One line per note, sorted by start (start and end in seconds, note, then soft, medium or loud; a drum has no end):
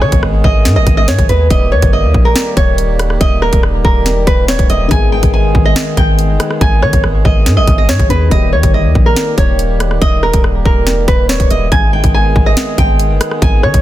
0.00 8.27 D#3 medium
0.00 0.12 D#3 loud
0.00 1.47 G#3 medium
0.00 1.47 B3 medium
0.00 1.47 G#4 medium
0.00 0.20 C#5 medium
0.00 cross-stick medium
0.12 0.22 G#1 loud
0.12 kick medium
0.12 closed hi-hat medium
0.23 0.43 G#1 loud
0.23 cross-stick loud
0.44 0.67 G#1 loud
0.44 0.74 D#5 medium
0.44 kick loud
0.65 0.78 G#2 loud
0.65 snare medium
0.65 closed hi-hat medium
0.76 0.86 G#1 loud
0.76 0.95 D#5 medium
0.87 1.09 G#1 loud
0.87 kick loud
0.87 closed hi-hat medium
0.97 1.07 D#5 medium
1.08 1.18 G#2 loud
1.08 1.27 C#5 medium
1.08 snare loud
1.19 1.29 G#1 loud
1.19 kick loud
1.19 closed hi-hat medium
1.29 1.50 D#2 loud
1.29 1.48 B4 loud
1.29 closed hi-hat medium
1.50 1.73 D#1 loud
1.50 4.88 G3 medium
1.50 4.88 A#3 medium
1.50 4.88 G4 medium
1.50 1.69 D#5 loud
1.50 kick loud
1.50 closed hi-hat medium
1.72 1.82 D#2 loud
1.72 1.90 C#5 medium
1.82 2.05 G1 loud
1.82 kick medium
1.82 closed hi-hat medium
1.93 2.23 D#5 medium
2.04 2.14 D#2 loud
2.14 2.35 A#1 loud
2.14 kick loud
2.25 2.55 A#4 medium
2.36 snare loud
2.36 closed hi-hat medium
2.57 3.18 D#1 loud
2.57 3.17 C#5 medium
2.57 kick loud
2.57 closed hi-hat medium
2.78 closed hi-hat medium
2.99 cross-stick loud
2.99 closed hi-hat medium
3.10 cross-stick medium
3.21 3.51 D#1 loud
3.21 3.39 D#5 loud
3.21 kick loud
3.21 closed hi-hat medium
3.42 3.61 A#4 medium
3.42 cross-stick medium
3.53 3.63 D#1 loud
3.53 kick loud
3.53 closed hi-hat medium
3.63 3.84 D#1 loud
3.63 cross-stick loud
3.85 4.07 D#1 loud
3.85 4.25 A#4 medium
3.85 kick loud
4.06 4.26 E1 loud
4.06 snare medium
4.06 closed hi-hat medium
4.27 4.58 D#1 loud
4.27 4.46 B4 medium
4.27 kick loud
4.27 closed hi-hat medium
4.48 4.67 C#5 medium
4.48 snare loud
4.59 4.69 D#1 loud
4.59 kick medium
4.59 closed hi-hat medium
4.70 4.90 D#1 loud
4.70 4.88 D#5 medium
4.70 closed hi-hat medium
4.88 5.22 G#1 loud
4.88 8.05 D#3 medium
4.88 8.28 G#3 medium
4.88 8.06 B3 medium
4.88 8.28 B3 medium
4.88 8.28 G#4 medium
4.88 5.10 G#5 loud
4.88 kick loud
4.88 closed hi-hat medium
4.94 8.07 G#4 medium
5.12 5.31 G5 medium
5.23 5.54 G#1 loud
5.23 kick loud
5.23 closed hi-hat medium
5.34 5.64 G#5 medium
5.55 5.75 G#1 loud
5.55 kick loud
5.65 5.95 D#5 medium
5.76 snare loud
5.76 closed hi-hat medium
5.97 6.31 G#1 loud
5.97 6.57 G5 medium
5.97 kick loud
5.97 closed hi-hat medium
6.19 closed hi-hat medium
6.29 6.39 G1 loud
6.40 cross-stick loud
6.40 closed hi-hat medium
6.51 cross-stick medium
6.61 6.84 G#1 loud
6.61 6.80 G#5 medium
6.61 kick loud
6.61 closed hi-hat medium
6.82 6.93 D#3 loud
6.82 7.01 C#5 medium
6.82 cross-stick medium
6.93 7.03 G#1 loud
6.93 kick medium
6.93 closed hi-hat medium
7.04 7.24 G#1 loud
7.04 cross-stick loud
7.25 7.48 G#1 loud
7.25 7.55 D#5 medium
7.25 kick loud
7.46 7.58 G#2 loud
7.46 snare medium
7.46 closed hi-hat medium
7.57 7.67 G#1 loud
7.57 7.75 D#5 medium
7.67 7.90 G#1 loud
7.67 kick loud
7.67 closed hi-hat loud
7.78 7.87 D#5 medium
7.89 7.99 G#2 loud
7.89 8.07 C#5 medium
7.89 snare loud
7.99 8.09 G#1 loud
7.99 kick medium
7.99 closed hi-hat medium
8.09 8.30 D#2 loud
8.09 8.27 D#3 medium
8.09 8.32 B3 medium
8.09 8.32 G#4 medium
8.09 8.29 B4 medium
8.09 closed hi-hat medium
8.29 8.54 D#1 loud
8.29 11.66 D#3 medium
8.29 11.68 D#3 medium
8.29 11.68 G3 medium
8.29 11.68 A#3 medium
8.29 11.68 G4 medium
8.29 8.50 D#5 loud
8.29 kick loud
8.29 closed hi-hat medium
8.34 11.69 G4 medium
8.53 8.63 D#2 loud
8.53 8.71 C#5 medium
8.63 8.86 G1 loud
8.63 kick loud
8.63 closed hi-hat medium
8.74 9.04 D#5 medium
8.85 8.95 D#2 loud
8.95 9.16 A#1 loud
8.95 kick loud
9.06 9.36 A#4 medium
9.16 snare loud
9.16 closed hi-hat medium
9.38 9.99 D#1 loud
9.38 9.98 C#5 medium
9.38 kick loud
9.38 closed hi-hat medium
9.59 closed hi-hat medium
9.80 cross-stick loud
9.80 closed hi-hat medium
9.91 cross-stick medium
10.02 10.32 D#1 loud
10.02 10.20 D#5 loud
10.02 kick loud
10.02 closed hi-hat medium
10.23 10.41 A#4 medium
10.23 cross-stick medium
10.34 10.44 D#1 loud
10.34 kick medium
10.34 closed hi-hat medium
10.44 10.65 D#1 loud
10.44 cross-stick loud
10.65 10.88 D#1 loud
10.65 11.05 A#4 medium
10.65 kick loud
10.87 11.07 E1 loud
10.87 snare medium
10.87 closed hi-hat medium
11.08 11.39 D#1 loud
11.08 11.27 B4 medium
11.08 kick loud
11.08 closed hi-hat medium
11.29 11.48 C#5 medium
11.29 snare loud
11.40 11.50 D#1 loud
11.40 kick medium
11.40 closed hi-hat medium
11.51 11.71 D#1 loud
11.51 11.69 D#5 medium
11.51 closed hi-hat medium
11.72 12.02 G#1 loud
11.72 13.82 D#3 medium
11.72 13.82 G#3 medium
11.72 13.82 B3 medium
11.72 13.82 G#4 medium
11.72 11.90 G#5 loud
11.72 kick loud
11.72 closed hi-hat medium
11.93 12.12 G5 medium
12.04 12.34 G#1 loud
12.04 kick medium
12.04 closed hi-hat medium
12.14 12.44 G#5 medium
12.36 12.56 G#1 loud
12.36 kick loud
12.46 12.76 D#5 medium
12.57 snare loud
12.57 closed hi-hat medium
12.78 13.12 G#1 loud
12.78 13.38 G5 medium
12.78 kick loud
12.78 closed hi-hat medium
12.99 closed hi-hat medium
13.10 13.20 G1 loud
13.21 cross-stick loud
13.21 closed hi-hat medium
13.31 cross-stick medium
13.42 13.65 G#1 loud
13.42 13.61 G#5 medium
13.42 kick loud
13.42 closed hi-hat medium
13.63 13.73 D#3 loud
13.63 13.82 C#5 medium
13.63 cross-stick medium
13.74 13.82 G#1 loud
13.74 kick medium
13.74 closed hi-hat medium